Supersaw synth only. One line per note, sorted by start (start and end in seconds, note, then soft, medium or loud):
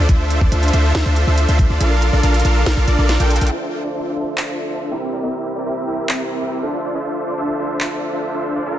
0.09 0.39 D4 medium
0.09 0.39 F4 medium
0.09 0.39 A4 medium
0.09 0.39 E5 medium
0.41 0.49 D4 medium
0.41 0.49 F4 medium
0.41 0.49 A4 medium
0.41 0.49 C5 medium
0.41 0.49 D5 medium
0.52 0.71 D4 loud
0.52 0.71 F4 medium
0.52 0.71 A4 medium
0.52 0.71 C5 medium
0.52 0.71 E5 loud
0.73 0.92 D4 loud
0.73 0.92 F4 medium
0.73 0.92 A4 medium
0.73 0.92 C5 medium
0.73 0.92 E5 loud
0.95 1.03 D4 medium
0.95 1.03 F4 medium
0.95 1.03 C5 medium
1.06 1.25 D4 medium
1.06 1.25 F4 medium
1.06 1.25 A4 medium
1.06 1.25 C5 medium
1.06 1.25 E5 medium
1.27 1.46 D4 medium
1.27 1.46 F4 medium
1.27 1.46 A4 medium
1.27 1.46 C5 medium
1.27 1.46 E5 medium
1.48 1.67 D4 medium
1.48 1.67 F4 medium
1.48 1.67 A4 medium
1.48 1.67 C5 medium
1.48 1.67 E5 loud
1.70 1.78 D4 medium
1.70 1.78 F4 medium
1.70 1.78 A4 medium
1.70 1.78 C5 medium
1.70 1.78 D5 medium
1.81 2.10 D4 medium
1.81 2.10 F4 medium
1.81 2.10 A4 medium
1.81 2.10 A#4 medium
1.81 2.10 F5 medium
2.13 2.21 D4 medium
2.13 2.21 F4 medium
2.13 2.21 A4 medium
2.13 2.21 A#4 medium
2.13 2.21 D5 medium
2.23 2.42 D4 loud
2.23 2.42 F4 medium
2.23 2.42 A4 medium
2.23 2.42 A#4 medium
2.23 2.42 F5 loud
2.45 2.64 D4 loud
2.45 2.64 F4 medium
2.45 2.64 A4 medium
2.45 2.64 A#4 medium
2.45 2.64 F5 loud
2.66 2.75 D4 medium
2.66 2.75 F4 medium
2.66 2.75 A4 medium
2.66 2.75 A#4 medium
2.66 2.75 F5 medium
2.77 2.86 D4 medium
2.77 2.86 F4 medium
2.77 2.86 A4 medium
2.77 2.86 A#4 medium
2.77 2.86 F5 medium
2.88 2.97 D4 medium
2.88 2.97 F4 medium
2.88 2.97 A4 medium
2.88 2.97 A#4 medium
2.88 2.97 D5 medium
2.99 3.17 D4 medium
2.99 3.17 F4 medium
2.99 3.17 A4 medium
2.99 3.17 A#4 medium
2.99 3.17 D5 loud
3.20 3.39 D4 loud
3.20 3.39 F4 medium
3.20 3.39 A4 medium
3.20 3.39 A#4 medium
3.20 3.39 G5 loud
3.41 3.49 D4 medium
3.41 3.49 F4 medium
3.41 3.49 A4 medium
3.41 3.49 A#4 medium
3.41 3.49 G5 medium
3.52 3.82 D4 medium
3.52 3.82 F4 medium
3.52 3.82 A4 medium
3.52 3.82 C5 medium
3.52 3.82 E5 medium
3.84 3.92 D4 medium
3.84 3.92 F4 medium
3.84 3.92 A4 medium
3.84 3.92 C5 medium
3.84 3.92 D5 medium
3.95 4.14 D4 medium
3.95 4.14 F4 medium
3.95 4.14 A4 medium
3.95 4.14 C5 medium
3.95 4.14 E5 loud
4.16 4.35 D4 medium
4.16 4.35 F4 medium
4.16 4.35 A4 medium
4.16 4.35 C5 medium
4.16 4.35 E5 loud
4.37 4.46 D4 medium
4.37 4.46 F4 medium
4.37 4.46 A4 medium
4.37 4.46 C5 medium
4.48 4.67 D4 medium
4.48 4.67 F4 medium
4.48 4.67 A4 medium
4.48 4.67 C5 medium
4.48 4.67 E5 medium
4.70 4.89 D4 medium
4.70 4.89 F4 medium
4.70 4.89 A4 medium
4.70 4.89 C5 medium
4.70 4.89 E5 medium
4.91 5.10 C4 medium
4.91 5.10 E4 medium
4.91 5.10 G4 medium
4.91 5.10 A#4 medium
4.91 5.10 E5 loud
5.13 5.21 C4 medium
5.13 5.21 E4 medium
5.13 5.21 G4 medium
5.13 5.21 A#4 medium
5.13 5.21 D5 medium
5.23 5.53 C4 medium
5.23 5.53 E4 medium
5.23 5.53 G4 medium
5.23 5.53 A#4 medium
5.23 5.53 E5 medium
5.56 5.64 C4 medium
5.56 5.64 E4 medium
5.56 5.64 G4 medium
5.56 5.64 A#4 medium
5.56 5.64 D5 medium
5.66 5.85 C4 medium
5.66 5.85 E4 medium
5.66 5.85 G4 medium
5.66 5.85 A#4 medium
5.66 5.85 E5 loud
5.87 6.06 C4 medium
5.87 6.06 E4 medium
5.87 6.06 G4 medium
5.87 6.06 A#4 medium
5.87 6.06 E5 loud
6.09 6.17 C4 medium
6.09 6.17 E4 medium
6.09 6.17 E5 medium
6.20 6.39 C4 medium
6.20 6.39 E4 medium
6.20 6.39 G4 medium
6.20 6.39 A#4 medium
6.20 6.39 E5 medium
6.41 6.60 C4 medium
6.41 6.60 E4 medium
6.41 6.60 G4 medium
6.41 6.60 A#4 medium
6.41 6.60 E5 medium
6.63 6.82 D4 medium
6.63 6.82 F4 medium
6.63 6.82 A4 medium
6.63 6.82 C5 medium
6.63 6.82 E5 loud
6.84 6.92 D4 medium
6.84 6.92 F4 medium
6.84 6.92 A4 medium
6.84 6.92 C5 medium
6.84 6.92 D5 medium
6.95 7.24 D4 medium
6.95 7.24 F4 medium
6.95 7.24 A4 medium
6.95 7.24 C5 medium
6.95 7.24 E5 medium
7.27 7.35 D4 medium
7.27 7.35 F4 medium
7.27 7.35 A4 medium
7.27 7.35 C5 medium
7.27 7.35 D5 medium
7.38 7.57 D4 medium
7.38 7.57 F4 medium
7.38 7.57 A4 medium
7.38 7.57 C5 medium
7.38 7.57 E5 loud
7.59 7.78 D4 medium
7.59 7.78 F4 medium
7.59 7.78 A4 medium
7.59 7.78 C5 medium
7.59 7.78 E5 loud
7.80 7.89 D4 medium
7.80 7.89 F4 medium
7.80 7.89 A4 medium
7.80 7.89 E5 medium
7.91 8.10 D4 medium
7.91 8.10 F4 medium
7.91 8.10 A4 medium
7.91 8.10 C5 medium
7.91 8.10 E5 medium
8.13 8.32 D4 medium
8.13 8.32 F4 medium
8.13 8.32 A4 medium
8.13 8.32 C5 medium
8.13 8.32 E5 medium
8.34 8.53 D4 medium
8.34 8.53 F4 medium
8.34 8.53 A4 medium
8.34 8.53 C5 medium
8.34 8.53 E5 loud
8.56 8.64 D4 medium
8.56 8.64 F4 medium
8.56 8.64 A4 medium
8.56 8.64 C5 medium
8.56 8.64 D5 medium
8.66 8.79 D4 medium
8.66 8.79 F4 medium
8.66 8.79 A4 medium
8.66 8.79 A#4 medium
8.66 8.79 F5 medium